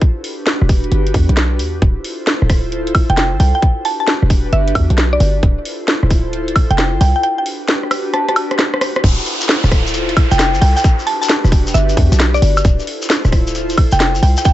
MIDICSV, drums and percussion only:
0, 0, Header, 1, 3, 480
1, 0, Start_track
1, 0, Tempo, 451128
1, 16, Time_signature, 4, 2, 24, 8
1, 15461, End_track
2, 0, Start_track
2, 0, Title_t, "Shekere"
2, 9624, Note_on_c, 9, 82, 62
2, 9730, Note_off_c, 9, 82, 0
2, 9767, Note_on_c, 9, 82, 35
2, 9873, Note_off_c, 9, 82, 0
2, 10012, Note_on_c, 9, 82, 83
2, 10104, Note_off_c, 9, 82, 0
2, 10104, Note_on_c, 9, 82, 67
2, 10210, Note_off_c, 9, 82, 0
2, 10259, Note_on_c, 9, 82, 39
2, 10365, Note_off_c, 9, 82, 0
2, 10502, Note_on_c, 9, 82, 82
2, 10572, Note_off_c, 9, 82, 0
2, 10572, Note_on_c, 9, 82, 69
2, 10678, Note_off_c, 9, 82, 0
2, 10734, Note_on_c, 9, 82, 36
2, 10840, Note_off_c, 9, 82, 0
2, 10976, Note_on_c, 9, 82, 81
2, 11061, Note_off_c, 9, 82, 0
2, 11061, Note_on_c, 9, 82, 63
2, 11167, Note_off_c, 9, 82, 0
2, 11217, Note_on_c, 9, 82, 38
2, 11324, Note_off_c, 9, 82, 0
2, 11456, Note_on_c, 9, 82, 80
2, 11539, Note_off_c, 9, 82, 0
2, 11539, Note_on_c, 9, 82, 66
2, 11646, Note_off_c, 9, 82, 0
2, 11694, Note_on_c, 9, 82, 45
2, 11800, Note_off_c, 9, 82, 0
2, 11944, Note_on_c, 9, 82, 87
2, 12016, Note_off_c, 9, 82, 0
2, 12016, Note_on_c, 9, 82, 71
2, 12123, Note_off_c, 9, 82, 0
2, 12177, Note_on_c, 9, 82, 45
2, 12283, Note_off_c, 9, 82, 0
2, 12419, Note_on_c, 9, 82, 79
2, 12496, Note_off_c, 9, 82, 0
2, 12496, Note_on_c, 9, 82, 75
2, 12603, Note_off_c, 9, 82, 0
2, 12653, Note_on_c, 9, 82, 39
2, 12759, Note_off_c, 9, 82, 0
2, 12899, Note_on_c, 9, 82, 89
2, 12976, Note_off_c, 9, 82, 0
2, 12976, Note_on_c, 9, 82, 70
2, 13082, Note_off_c, 9, 82, 0
2, 13134, Note_on_c, 9, 82, 45
2, 13241, Note_off_c, 9, 82, 0
2, 13375, Note_on_c, 9, 82, 80
2, 13457, Note_off_c, 9, 82, 0
2, 13457, Note_on_c, 9, 82, 72
2, 13563, Note_off_c, 9, 82, 0
2, 13616, Note_on_c, 9, 82, 45
2, 13722, Note_off_c, 9, 82, 0
2, 13853, Note_on_c, 9, 82, 80
2, 13939, Note_off_c, 9, 82, 0
2, 13939, Note_on_c, 9, 82, 74
2, 14045, Note_off_c, 9, 82, 0
2, 14092, Note_on_c, 9, 82, 39
2, 14199, Note_off_c, 9, 82, 0
2, 14335, Note_on_c, 9, 82, 78
2, 14419, Note_off_c, 9, 82, 0
2, 14419, Note_on_c, 9, 82, 62
2, 14525, Note_off_c, 9, 82, 0
2, 14573, Note_on_c, 9, 82, 38
2, 14680, Note_off_c, 9, 82, 0
2, 14806, Note_on_c, 9, 82, 84
2, 14900, Note_off_c, 9, 82, 0
2, 14900, Note_on_c, 9, 82, 70
2, 15007, Note_off_c, 9, 82, 0
2, 15057, Note_on_c, 9, 82, 45
2, 15164, Note_off_c, 9, 82, 0
2, 15289, Note_on_c, 9, 82, 89
2, 15369, Note_off_c, 9, 82, 0
2, 15369, Note_on_c, 9, 82, 78
2, 15461, Note_off_c, 9, 82, 0
2, 15461, End_track
3, 0, Start_track
3, 0, Title_t, "Drums"
3, 16, Note_on_c, 9, 36, 121
3, 16, Note_on_c, 9, 42, 63
3, 123, Note_off_c, 9, 36, 0
3, 123, Note_off_c, 9, 42, 0
3, 256, Note_on_c, 9, 46, 99
3, 363, Note_off_c, 9, 46, 0
3, 496, Note_on_c, 9, 38, 120
3, 496, Note_on_c, 9, 42, 63
3, 603, Note_off_c, 9, 38, 0
3, 603, Note_off_c, 9, 42, 0
3, 655, Note_on_c, 9, 37, 30
3, 736, Note_on_c, 9, 36, 110
3, 736, Note_on_c, 9, 46, 87
3, 762, Note_off_c, 9, 37, 0
3, 842, Note_off_c, 9, 36, 0
3, 842, Note_off_c, 9, 46, 0
3, 894, Note_on_c, 9, 42, 35
3, 975, Note_off_c, 9, 42, 0
3, 975, Note_on_c, 9, 42, 64
3, 1081, Note_off_c, 9, 42, 0
3, 1135, Note_on_c, 9, 42, 64
3, 1216, Note_on_c, 9, 36, 109
3, 1216, Note_on_c, 9, 46, 97
3, 1241, Note_off_c, 9, 42, 0
3, 1322, Note_off_c, 9, 36, 0
3, 1322, Note_off_c, 9, 46, 0
3, 1375, Note_on_c, 9, 42, 64
3, 1456, Note_off_c, 9, 42, 0
3, 1456, Note_on_c, 9, 37, 65
3, 1456, Note_on_c, 9, 38, 118
3, 1456, Note_on_c, 9, 42, 60
3, 1562, Note_off_c, 9, 37, 0
3, 1562, Note_off_c, 9, 38, 0
3, 1562, Note_off_c, 9, 42, 0
3, 1695, Note_on_c, 9, 46, 90
3, 1802, Note_off_c, 9, 46, 0
3, 1936, Note_on_c, 9, 36, 121
3, 1936, Note_on_c, 9, 42, 62
3, 2042, Note_off_c, 9, 36, 0
3, 2042, Note_off_c, 9, 42, 0
3, 2176, Note_on_c, 9, 46, 98
3, 2282, Note_off_c, 9, 46, 0
3, 2416, Note_on_c, 9, 38, 121
3, 2416, Note_on_c, 9, 42, 67
3, 2522, Note_off_c, 9, 38, 0
3, 2522, Note_off_c, 9, 42, 0
3, 2575, Note_on_c, 9, 37, 29
3, 2656, Note_off_c, 9, 37, 0
3, 2656, Note_on_c, 9, 36, 106
3, 2656, Note_on_c, 9, 37, 65
3, 2656, Note_on_c, 9, 46, 89
3, 2762, Note_off_c, 9, 36, 0
3, 2762, Note_off_c, 9, 37, 0
3, 2762, Note_off_c, 9, 46, 0
3, 2895, Note_on_c, 9, 42, 66
3, 3002, Note_off_c, 9, 42, 0
3, 3054, Note_on_c, 9, 42, 64
3, 3135, Note_on_c, 9, 46, 101
3, 3135, Note_on_c, 9, 76, 80
3, 3136, Note_on_c, 9, 36, 107
3, 3161, Note_off_c, 9, 42, 0
3, 3241, Note_off_c, 9, 46, 0
3, 3241, Note_off_c, 9, 76, 0
3, 3242, Note_off_c, 9, 36, 0
3, 3295, Note_on_c, 9, 42, 68
3, 3376, Note_off_c, 9, 42, 0
3, 3376, Note_on_c, 9, 37, 62
3, 3376, Note_on_c, 9, 38, 117
3, 3376, Note_on_c, 9, 42, 65
3, 3482, Note_off_c, 9, 37, 0
3, 3482, Note_off_c, 9, 38, 0
3, 3482, Note_off_c, 9, 42, 0
3, 3616, Note_on_c, 9, 46, 90
3, 3723, Note_off_c, 9, 46, 0
3, 3856, Note_on_c, 9, 36, 114
3, 3857, Note_on_c, 9, 42, 69
3, 3963, Note_off_c, 9, 36, 0
3, 3963, Note_off_c, 9, 42, 0
3, 4096, Note_on_c, 9, 46, 101
3, 4202, Note_off_c, 9, 46, 0
3, 4336, Note_on_c, 9, 38, 111
3, 4336, Note_on_c, 9, 42, 67
3, 4443, Note_off_c, 9, 38, 0
3, 4443, Note_off_c, 9, 42, 0
3, 4496, Note_on_c, 9, 37, 29
3, 4576, Note_on_c, 9, 36, 101
3, 4576, Note_on_c, 9, 46, 93
3, 4602, Note_off_c, 9, 37, 0
3, 4682, Note_off_c, 9, 46, 0
3, 4683, Note_off_c, 9, 36, 0
3, 4816, Note_on_c, 9, 42, 67
3, 4922, Note_off_c, 9, 42, 0
3, 4975, Note_on_c, 9, 42, 67
3, 5056, Note_on_c, 9, 36, 102
3, 5057, Note_on_c, 9, 46, 102
3, 5057, Note_on_c, 9, 76, 81
3, 5082, Note_off_c, 9, 42, 0
3, 5163, Note_off_c, 9, 36, 0
3, 5163, Note_off_c, 9, 46, 0
3, 5163, Note_off_c, 9, 76, 0
3, 5216, Note_on_c, 9, 42, 69
3, 5296, Note_off_c, 9, 42, 0
3, 5296, Note_on_c, 9, 37, 61
3, 5296, Note_on_c, 9, 38, 112
3, 5296, Note_on_c, 9, 42, 66
3, 5403, Note_off_c, 9, 37, 0
3, 5403, Note_off_c, 9, 38, 0
3, 5403, Note_off_c, 9, 42, 0
3, 5536, Note_on_c, 9, 46, 89
3, 5642, Note_off_c, 9, 46, 0
3, 5776, Note_on_c, 9, 36, 113
3, 5776, Note_on_c, 9, 42, 68
3, 5882, Note_off_c, 9, 42, 0
3, 5883, Note_off_c, 9, 36, 0
3, 6016, Note_on_c, 9, 46, 106
3, 6123, Note_off_c, 9, 46, 0
3, 6256, Note_on_c, 9, 38, 114
3, 6256, Note_on_c, 9, 42, 69
3, 6362, Note_off_c, 9, 38, 0
3, 6362, Note_off_c, 9, 42, 0
3, 6416, Note_on_c, 9, 37, 30
3, 6496, Note_on_c, 9, 36, 101
3, 6496, Note_on_c, 9, 46, 98
3, 6522, Note_off_c, 9, 37, 0
3, 6602, Note_off_c, 9, 36, 0
3, 6602, Note_off_c, 9, 46, 0
3, 6736, Note_on_c, 9, 42, 68
3, 6843, Note_off_c, 9, 42, 0
3, 6895, Note_on_c, 9, 42, 70
3, 6976, Note_on_c, 9, 36, 101
3, 6976, Note_on_c, 9, 46, 106
3, 6976, Note_on_c, 9, 76, 80
3, 7002, Note_off_c, 9, 42, 0
3, 7082, Note_off_c, 9, 36, 0
3, 7082, Note_off_c, 9, 46, 0
3, 7082, Note_off_c, 9, 76, 0
3, 7135, Note_on_c, 9, 42, 71
3, 7216, Note_off_c, 9, 42, 0
3, 7216, Note_on_c, 9, 37, 65
3, 7216, Note_on_c, 9, 38, 108
3, 7216, Note_on_c, 9, 42, 67
3, 7323, Note_off_c, 9, 37, 0
3, 7323, Note_off_c, 9, 38, 0
3, 7323, Note_off_c, 9, 42, 0
3, 7456, Note_on_c, 9, 46, 97
3, 7562, Note_off_c, 9, 46, 0
3, 7697, Note_on_c, 9, 42, 66
3, 7803, Note_off_c, 9, 42, 0
3, 7936, Note_on_c, 9, 46, 110
3, 8042, Note_off_c, 9, 46, 0
3, 8177, Note_on_c, 9, 38, 114
3, 8177, Note_on_c, 9, 42, 68
3, 8283, Note_off_c, 9, 38, 0
3, 8283, Note_off_c, 9, 42, 0
3, 8335, Note_on_c, 9, 37, 31
3, 8416, Note_off_c, 9, 37, 0
3, 8416, Note_on_c, 9, 37, 70
3, 8416, Note_on_c, 9, 46, 98
3, 8416, Note_on_c, 9, 76, 62
3, 8522, Note_off_c, 9, 37, 0
3, 8522, Note_off_c, 9, 46, 0
3, 8522, Note_off_c, 9, 76, 0
3, 8656, Note_on_c, 9, 37, 61
3, 8656, Note_on_c, 9, 42, 69
3, 8763, Note_off_c, 9, 37, 0
3, 8763, Note_off_c, 9, 42, 0
3, 8816, Note_on_c, 9, 37, 56
3, 8816, Note_on_c, 9, 42, 67
3, 8897, Note_on_c, 9, 46, 112
3, 8897, Note_on_c, 9, 76, 76
3, 8922, Note_off_c, 9, 37, 0
3, 8922, Note_off_c, 9, 42, 0
3, 9003, Note_off_c, 9, 46, 0
3, 9003, Note_off_c, 9, 76, 0
3, 9056, Note_on_c, 9, 37, 69
3, 9056, Note_on_c, 9, 42, 69
3, 9137, Note_off_c, 9, 37, 0
3, 9137, Note_off_c, 9, 42, 0
3, 9137, Note_on_c, 9, 37, 86
3, 9137, Note_on_c, 9, 38, 113
3, 9137, Note_on_c, 9, 42, 66
3, 9243, Note_off_c, 9, 37, 0
3, 9243, Note_off_c, 9, 38, 0
3, 9243, Note_off_c, 9, 42, 0
3, 9296, Note_on_c, 9, 37, 78
3, 9377, Note_off_c, 9, 37, 0
3, 9377, Note_on_c, 9, 37, 99
3, 9377, Note_on_c, 9, 46, 100
3, 9483, Note_off_c, 9, 37, 0
3, 9483, Note_off_c, 9, 46, 0
3, 9536, Note_on_c, 9, 37, 91
3, 9536, Note_on_c, 9, 42, 39
3, 9616, Note_on_c, 9, 36, 121
3, 9617, Note_off_c, 9, 42, 0
3, 9617, Note_on_c, 9, 42, 66
3, 9617, Note_on_c, 9, 49, 102
3, 9642, Note_off_c, 9, 37, 0
3, 9723, Note_off_c, 9, 36, 0
3, 9724, Note_off_c, 9, 42, 0
3, 9724, Note_off_c, 9, 49, 0
3, 9856, Note_on_c, 9, 46, 109
3, 9962, Note_off_c, 9, 46, 0
3, 10097, Note_on_c, 9, 38, 120
3, 10097, Note_on_c, 9, 42, 68
3, 10204, Note_off_c, 9, 38, 0
3, 10204, Note_off_c, 9, 42, 0
3, 10257, Note_on_c, 9, 37, 32
3, 10337, Note_off_c, 9, 37, 0
3, 10337, Note_on_c, 9, 36, 107
3, 10337, Note_on_c, 9, 37, 72
3, 10337, Note_on_c, 9, 46, 99
3, 10443, Note_off_c, 9, 36, 0
3, 10444, Note_off_c, 9, 37, 0
3, 10444, Note_off_c, 9, 46, 0
3, 10497, Note_on_c, 9, 42, 36
3, 10577, Note_off_c, 9, 42, 0
3, 10577, Note_on_c, 9, 42, 66
3, 10684, Note_off_c, 9, 42, 0
3, 10737, Note_on_c, 9, 42, 66
3, 10817, Note_on_c, 9, 36, 112
3, 10817, Note_on_c, 9, 46, 110
3, 10817, Note_on_c, 9, 76, 60
3, 10843, Note_off_c, 9, 42, 0
3, 10923, Note_off_c, 9, 36, 0
3, 10924, Note_off_c, 9, 46, 0
3, 10924, Note_off_c, 9, 76, 0
3, 10976, Note_on_c, 9, 42, 67
3, 11057, Note_off_c, 9, 42, 0
3, 11057, Note_on_c, 9, 37, 69
3, 11057, Note_on_c, 9, 38, 117
3, 11057, Note_on_c, 9, 42, 64
3, 11163, Note_off_c, 9, 37, 0
3, 11163, Note_off_c, 9, 38, 0
3, 11163, Note_off_c, 9, 42, 0
3, 11297, Note_on_c, 9, 46, 99
3, 11404, Note_off_c, 9, 46, 0
3, 11456, Note_on_c, 9, 42, 37
3, 11536, Note_off_c, 9, 42, 0
3, 11536, Note_on_c, 9, 42, 64
3, 11537, Note_on_c, 9, 36, 127
3, 11643, Note_off_c, 9, 36, 0
3, 11643, Note_off_c, 9, 42, 0
3, 11777, Note_on_c, 9, 46, 108
3, 11883, Note_off_c, 9, 46, 0
3, 12017, Note_on_c, 9, 38, 127
3, 12017, Note_on_c, 9, 42, 66
3, 12124, Note_off_c, 9, 38, 0
3, 12124, Note_off_c, 9, 42, 0
3, 12177, Note_on_c, 9, 37, 33
3, 12257, Note_on_c, 9, 36, 114
3, 12257, Note_on_c, 9, 46, 95
3, 12283, Note_off_c, 9, 37, 0
3, 12363, Note_off_c, 9, 36, 0
3, 12364, Note_off_c, 9, 46, 0
3, 12416, Note_on_c, 9, 42, 37
3, 12496, Note_off_c, 9, 42, 0
3, 12496, Note_on_c, 9, 42, 65
3, 12603, Note_off_c, 9, 42, 0
3, 12656, Note_on_c, 9, 42, 65
3, 12737, Note_on_c, 9, 36, 115
3, 12737, Note_on_c, 9, 46, 108
3, 12763, Note_off_c, 9, 42, 0
3, 12843, Note_off_c, 9, 36, 0
3, 12843, Note_off_c, 9, 46, 0
3, 12896, Note_on_c, 9, 42, 63
3, 12977, Note_off_c, 9, 42, 0
3, 12977, Note_on_c, 9, 37, 70
3, 12977, Note_on_c, 9, 38, 120
3, 12977, Note_on_c, 9, 42, 61
3, 13084, Note_off_c, 9, 37, 0
3, 13084, Note_off_c, 9, 38, 0
3, 13084, Note_off_c, 9, 42, 0
3, 13217, Note_on_c, 9, 46, 96
3, 13324, Note_off_c, 9, 46, 0
3, 13376, Note_on_c, 9, 42, 37
3, 13376, Note_on_c, 9, 76, 61
3, 13457, Note_off_c, 9, 42, 0
3, 13457, Note_on_c, 9, 36, 127
3, 13457, Note_on_c, 9, 42, 64
3, 13483, Note_off_c, 9, 76, 0
3, 13563, Note_off_c, 9, 36, 0
3, 13564, Note_off_c, 9, 42, 0
3, 13697, Note_on_c, 9, 46, 104
3, 13803, Note_off_c, 9, 46, 0
3, 13937, Note_on_c, 9, 38, 127
3, 13937, Note_on_c, 9, 42, 66
3, 14043, Note_off_c, 9, 38, 0
3, 14043, Note_off_c, 9, 42, 0
3, 14096, Note_on_c, 9, 37, 32
3, 14177, Note_off_c, 9, 37, 0
3, 14177, Note_on_c, 9, 36, 114
3, 14177, Note_on_c, 9, 37, 72
3, 14177, Note_on_c, 9, 46, 96
3, 14283, Note_off_c, 9, 36, 0
3, 14283, Note_off_c, 9, 37, 0
3, 14283, Note_off_c, 9, 46, 0
3, 14336, Note_on_c, 9, 42, 35
3, 14417, Note_off_c, 9, 42, 0
3, 14417, Note_on_c, 9, 42, 64
3, 14523, Note_off_c, 9, 42, 0
3, 14576, Note_on_c, 9, 42, 62
3, 14657, Note_on_c, 9, 36, 113
3, 14657, Note_on_c, 9, 46, 105
3, 14657, Note_on_c, 9, 76, 60
3, 14682, Note_off_c, 9, 42, 0
3, 14763, Note_off_c, 9, 36, 0
3, 14764, Note_off_c, 9, 46, 0
3, 14764, Note_off_c, 9, 76, 0
3, 14816, Note_on_c, 9, 42, 65
3, 14897, Note_off_c, 9, 42, 0
3, 14897, Note_on_c, 9, 37, 68
3, 14897, Note_on_c, 9, 38, 121
3, 14897, Note_on_c, 9, 42, 63
3, 15003, Note_off_c, 9, 37, 0
3, 15003, Note_off_c, 9, 38, 0
3, 15003, Note_off_c, 9, 42, 0
3, 15138, Note_on_c, 9, 46, 91
3, 15244, Note_off_c, 9, 46, 0
3, 15297, Note_on_c, 9, 42, 36
3, 15377, Note_off_c, 9, 42, 0
3, 15377, Note_on_c, 9, 36, 127
3, 15377, Note_on_c, 9, 42, 65
3, 15461, Note_off_c, 9, 36, 0
3, 15461, Note_off_c, 9, 42, 0
3, 15461, End_track
0, 0, End_of_file